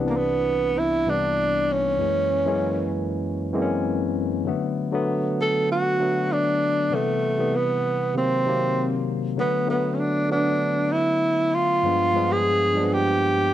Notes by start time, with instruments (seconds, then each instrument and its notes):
Already playing: tine electric piano D4
0.00 tine electric piano C2 E3 G3 B3 C4
0.07 tenor saxophone A#3, tine electric piano D4
0.17 tenor saxophone B3
0.79 tenor saxophone E4
1.06 tine electric piano C2 E3 G3 B3 D4, tenor saxophone D4
1.72 tenor saxophone C#4
1.98 tine electric piano F#2 E3 G#3 A#3 C#4
2.46 tine electric piano F#2 E3 G#3 A#3 C#4
3.53 tine electric piano F#2 E3 G#3 A#3 C4
3.62 tine electric piano C#4
4.45 tine electric piano D3 F#3 A3 B3
4.92 tine electric piano D3 F#3 A3 B3
5.41 tenor saxophone A4
5.71 tenor saxophone F#4
5.99 tine electric piano D3 F#3 A3 B3
6.32 tenor saxophone D4
6.90 tine electric piano C3 E3 G3 B3
6.95 tenor saxophone A3
7.37 tine electric piano C3 E3 G3 B3
7.56 tenor saxophone B3
8.14 tine electric piano C3 D#3 F#3 A#3, tenor saxophone C4
8.46 tine electric piano C3 D#3 F#3 A#3
9.37 tine electric piano D3 F#3 A3 B3, tenor saxophone B3
9.66 tine electric piano D3 F#3 A3 B3, tenor saxophone B3
9.94 tenor saxophone C#4
10.00 tenor saxophone D4
10.29 tine electric piano D3 F#3 A3 B3, tenor saxophone D4
10.92 tenor saxophone E4
11.54 tenor saxophone F4
11.83 tine electric piano G2 F3 G#3 B3 D4
12.13 tine electric piano G2 F3 G#3 B3 D4
12.32 tenor saxophone G#4
12.74 tine electric piano G2 F3 G#3 A#3 D4
12.83 tine electric piano B3, tenor saxophone G#4
12.93 tenor saxophone G4